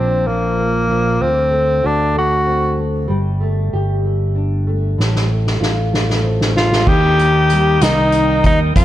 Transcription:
Already playing: fingered electric bass A#1, nylon-string guitar A#2 F3 D4, tenor saxophone C4
0.27 nylon-string guitar F3, tenor saxophone A#3
0.58 nylon-string guitar A#3
0.89 nylon-string guitar F3
1.20 fingered electric bass D2, nylon-string guitar D3, tenor saxophone C4
1.51 nylon-string guitar A3
1.84 fingered electric bass D2, tenor saxophone D4, nylon-string guitar F#4
2.15 nylon-string guitar A3, tenor saxophone F#4
2.46 nylon-string guitar C4
2.77 nylon-string guitar A3
3.08 fingered electric bass G1, nylon-string guitar G3
3.40 nylon-string guitar A3
3.73 fingered electric bass G1, nylon-string guitar G4
4.05 nylon-string guitar A3
4.35 nylon-string guitar D4
4.67 nylon-string guitar A3
4.98 fingered electric bass A1, nylon-string guitar A2, snare
5.16 snare
5.29 nylon-string guitar A3
5.47 snare
5.61 fingered electric bass A1, nylon-string guitar F4, snare
5.92 nylon-string guitar A3, snare
6.10 snare
6.24 nylon-string guitar C4
6.41 snare
6.55 nylon-string guitar A3, tenor saxophone F4, snare
6.73 snare
6.86 fingered electric bass D#2, nylon-string guitar D#3, tenor saxophone G4, tonewheel organ A#4 D#5 G5 D#6, kick, crash
7.19 nylon-string guitar A#3, closed hi-hat
7.50 nylon-string guitar G3, closed hi-hat
7.81 fingered electric bass C2, nylon-string guitar A#3, tenor saxophone D#4, snare, closed hi-hat
8.12 nylon-string guitar D#4, closed hi-hat
8.44 fingered electric bass D#2, nylon-string guitar G3, tenor saxophone D#4, kick, closed hi-hat
8.76 nylon-string guitar F2, fingered electric bass F2, tenor saxophone F4, tonewheel organ A4 C5 F5 C6, kick, closed hi-hat

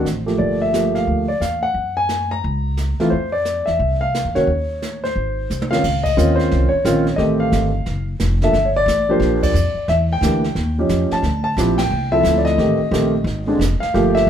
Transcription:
Already playing: grand piano C5
0.05 upright bass A1, snare, hi-hat pedal
0.26 grand piano F3 A3 A#3 G4, snare
0.38 upright bass G1, grand piano D5, brush sweep
0.62 grand piano E5
0.73 grand piano F3 A3 A#3 G4, snare, hi-hat pedal
0.95 grand piano F5, snare
1.07 upright bass D2, brush sweep
1.28 grand piano D5
1.40 upright bass E2, grand piano F5, snare, hi-hat pedal
1.63 grand piano F#5
1.74 upright bass F#2, brush sweep
1.97 grand piano G#5
2.09 snare, hi-hat pedal
2.31 grand piano A#5
2.43 upright bass C#2, brush sweep
2.77 snare, hi-hat pedal
3.00 grand piano E3 A3 C4 F4, muted upright bass stroke, snare
3.10 upright bass F2, grand piano C5, brush sweep
3.32 grand piano D5
3.45 snare, hi-hat pedal
3.66 upright bass E2, grand piano E5, snare
3.79 upright bass C2, brush sweep
4.01 grand piano F5
4.15 snare, hi-hat pedal
4.24 upright bass E2
4.35 upright bass C2, grand piano D#3 A#3 C#4 F#4 C#5, snare
4.47 upright bass D#2, brush sweep
4.82 snare, hi-hat pedal
5.04 grand piano C5, snare
5.16 upright bass G#1, brush sweep
5.50 upright bass C2, hi-hat pedal, high tom
5.62 high tom
5.71 grand piano D#3 C4 C#4 F4 F5, snare
5.84 upright bass C#2, brush sweep, kick, snare, crash
6.04 grand piano D#5, kick, crash
6.17 upright bass D#2, grand piano D#3 C4 C#4 F4, hi-hat pedal
6.36 grand piano C5, snare
6.51 upright bass C2, brush sweep, snare
6.69 grand piano C#5, muted upright bass stroke
6.85 upright bass A#1, grand piano D#3 C4 C#4 F4, snare, hi-hat pedal
7.07 snare
7.16 upright bass A1, grand piano D#3 A3 C4 G4 D#5, brush sweep, snare
7.40 grand piano F5
7.52 upright bass G1, snare, hi-hat pedal
7.86 upright bass F#1, brush sweep, snare
8.20 upright bass F1, snare, hi-hat pedal
8.42 grand piano F3 A#3 D4 A4 E5, snare
8.53 upright bass G1, brush sweep, snare
8.65 grand piano C#5
8.76 grand piano D5
8.86 upright bass A1, snare, hi-hat pedal
9.09 grand piano F3 A#3 D4 G4 C5
9.20 upright bass A#1, brush sweep, snare
9.43 grand piano D5, kick, crash
9.54 upright bass F2, hi-hat pedal
9.74 muted upright bass stroke
9.88 upright bass E2, grand piano E5, brush sweep, snare
10.13 grand piano G5
10.21 upright bass D2, grand piano E3 A#3 D4 G4, snare, hi-hat pedal
10.44 snare
10.55 upright bass D#2, brush sweep, snare
10.78 grand piano F3 C#4 D#4 G4
10.89 upright bass F2, snare, hi-hat pedal
11.11 grand piano A5, muted upright bass stroke, snare
11.22 upright bass D2, brush sweep, snare
11.44 grand piano A5
11.57 upright bass A#1, grand piano F3 C4 E4 G4, snare, hi-hat pedal
11.78 grand piano G5, snare, ride
11.91 upright bass C2, brush sweep
12.12 grand piano F3 C4 E4 A4 E5
12.23 upright bass D2, snare, hi-hat pedal
12.38 grand piano D5
12.45 grand piano D#5, snare
12.58 upright bass A1, grand piano D#3 A3 C4 G4, brush sweep, snare
12.79 muted upright bass stroke
12.91 upright bass A#1, grand piano D#3 A3 C4 G4, snare, hi-hat pedal
13.24 upright bass G#1, brush sweep, snare
13.47 grand piano D3 G#3 C4 D4
13.59 upright bass F1, snare, hi-hat pedal
13.80 grand piano F5, muted upright bass stroke, snare
13.94 upright bass G1, grand piano F3 A3 A#3 G4, brush sweep, snare
14.15 grand piano E5, snare
14.27 upright bass A#1

